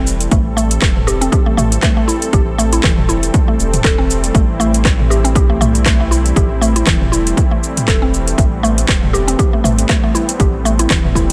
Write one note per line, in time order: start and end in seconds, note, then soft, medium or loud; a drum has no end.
0.00 0.28 E1 loud
0.00 11.33 E3 medium
0.00 11.33 G3 medium
0.00 11.33 A3 medium
0.00 11.33 C4 medium
0.00 0.31 E4 medium
0.07 shaker loud
0.21 closed hi-hat medium
0.21 shaker medium
0.31 0.78 A1 loud
0.31 0.39 A3 medium
0.31 4.33 A4 medium
0.31 kick loud
0.31 closed hi-hat soft
0.31 shaker soft
0.57 0.69 A3 loud
0.57 shaker loud
0.71 closed hi-hat medium
0.71 shaker medium
0.82 1.28 E1 medium
0.82 kick loud
0.82 cross-stick loud
0.82 clap loud
0.82 closed hi-hat soft
0.82 shaker soft
0.96 mid tom medium
1.07 1.20 G4 medium
1.07 cross-stick medium
1.07 shaker loud
1.21 1.32 C4 medium
1.21 closed hi-hat medium
1.21 shaker medium
1.32 1.40 G4 medium
1.32 kick loud
1.32 closed hi-hat soft
1.32 shaker soft
1.46 1.56 A3 medium
1.57 1.78 A1 loud
1.57 1.70 A3 loud
1.57 mid tom medium
1.57 shaker loud
1.72 closed hi-hat medium
1.72 shaker medium
1.82 1.95 A3 loud
1.82 kick loud
1.82 cross-stick loud
1.82 clap medium
1.82 closed hi-hat soft
1.82 shaker soft
1.97 2.07 A3 medium
2.08 2.15 E4 medium
2.08 shaker loud
2.22 closed hi-hat medium
2.22 shaker medium
2.33 2.80 A1 loud
2.33 2.41 G4 medium
2.33 kick loud
2.33 closed hi-hat soft
2.33 shaker soft
2.58 2.71 A3 loud
2.58 shaker medium
2.73 2.82 E4 medium
2.73 closed hi-hat medium
2.73 shaker medium
2.83 3.30 E1 medium
2.83 2.96 E3 medium
2.83 kick loud
2.83 cross-stick loud
2.83 clap loud
2.83 closed hi-hat soft
2.83 shaker soft
2.98 mid tom medium
3.09 3.16 E4 medium
3.09 shaker loud
3.23 closed hi-hat medium
3.23 shaker medium
3.34 kick loud
3.34 closed hi-hat soft
3.34 shaker soft
3.48 3.54 A3 medium
3.59 3.80 E1 loud
3.59 shaker medium
3.74 closed hi-hat medium
3.74 mid tom medium
3.74 shaker medium
3.84 4.31 E1 loud
3.84 3.98 A4 medium
3.84 kick loud
3.84 cross-stick loud
3.84 clap medium
3.84 closed hi-hat soft
3.84 shaker soft
3.98 4.08 C4 medium
4.10 shaker loud
4.24 closed hi-hat medium
4.24 shaker medium
4.34 5.37 A1 loud
4.34 4.42 A3 medium
4.34 8.37 E4 medium
4.34 kick loud
4.34 closed hi-hat soft
4.34 shaker soft
4.60 4.73 A3 loud
4.60 shaker medium
4.74 closed hi-hat medium
4.74 shaker medium
4.85 kick loud
4.85 cross-stick loud
4.85 clap loud
4.85 closed hi-hat soft
4.85 shaker soft
4.99 mid tom medium
5.10 5.23 G4 medium
5.10 cross-stick medium
5.10 shaker medium
5.24 5.35 C4 medium
5.24 closed hi-hat medium
5.24 shaker medium
5.35 6.33 B1 loud
5.35 5.43 G4 medium
5.35 kick loud
5.35 closed hi-hat soft
5.35 shaker soft
5.50 5.60 A3 medium
5.61 5.74 A3 loud
5.61 mid tom loud
5.61 shaker medium
5.75 closed hi-hat medium
5.75 shaker medium
5.86 5.99 A3 loud
5.86 kick loud
5.86 cross-stick loud
5.86 clap loud
5.86 closed hi-hat soft
5.86 shaker soft
6.00 6.10 A3 medium
6.11 6.19 E4 medium
6.11 shaker medium
6.26 closed hi-hat medium
6.26 shaker medium
6.36 6.83 A1 loud
6.36 6.44 G4 medium
6.36 kick loud
6.36 closed hi-hat soft
6.36 shaker soft
6.61 6.74 A3 loud
6.61 shaker medium
6.76 6.86 E4 medium
6.76 closed hi-hat medium
6.76 shaker medium
6.87 7.33 E1 medium
6.87 7.00 E3 medium
6.87 kick loud
6.87 cross-stick loud
6.87 clap loud
6.87 closed hi-hat soft
6.87 shaker soft
7.01 mid tom medium
7.12 7.20 E4 medium
7.12 shaker medium
7.27 closed hi-hat medium
7.27 shaker soft
7.37 kick loud
7.37 closed hi-hat soft
7.37 shaker soft
7.51 7.57 A3 medium
7.63 shaker medium
7.77 closed hi-hat medium
7.77 mid tom medium
7.77 shaker medium
7.88 8.34 E1 loud
7.88 8.01 A4 medium
7.88 kick loud
7.88 cross-stick medium
7.88 clap loud
7.88 closed hi-hat soft
7.88 shaker soft
8.02 8.12 C4 medium
8.14 shaker medium
8.28 closed hi-hat medium
8.28 shaker medium
8.38 8.85 A1 loud
8.38 8.46 A3 medium
8.38 11.33 B3 medium
8.38 kick loud
8.38 closed hi-hat soft
8.38 shaker soft
8.63 8.76 A3 loud
8.63 shaker medium
8.78 closed hi-hat medium
8.78 shaker medium
8.88 9.35 E1 medium
8.88 kick loud
8.88 cross-stick loud
8.88 clap loud
8.88 closed hi-hat soft
8.88 shaker soft
9.03 mid tom medium
9.13 9.26 G4 medium
9.13 cross-stick medium
9.13 shaker medium
9.28 9.38 C4 medium
9.28 closed hi-hat medium
9.28 shaker soft
9.39 9.47 G4 medium
9.39 kick loud
9.39 closed hi-hat soft
9.39 shaker soft
9.53 9.63 A3 medium
9.64 9.85 A1 loud
9.64 9.77 A3 loud
9.64 mid tom loud
9.64 shaker medium
9.79 closed hi-hat medium
9.79 shaker medium
9.89 10.02 A3 loud
9.89 kick loud
9.89 cross-stick loud
9.89 clap loud
9.89 closed hi-hat soft
9.89 shaker soft
10.04 10.13 A3 medium
10.15 10.22 E4 medium
10.15 shaker medium
10.29 closed hi-hat medium
10.29 shaker medium
10.40 10.86 A1 loud
10.40 10.48 G4 medium
10.40 kick loud
10.40 closed hi-hat soft
10.40 shaker soft
10.65 10.78 A3 loud
10.65 shaker medium
10.79 10.89 E4 medium
10.79 closed hi-hat medium
10.79 shaker medium
10.90 11.33 E1 medium
10.90 11.03 E3 medium
10.90 kick loud
10.90 cross-stick loud
10.90 clap loud
10.90 closed hi-hat soft
10.90 shaker soft
11.04 mid tom medium
11.15 11.23 E4 medium
11.15 kick medium
11.15 shaker medium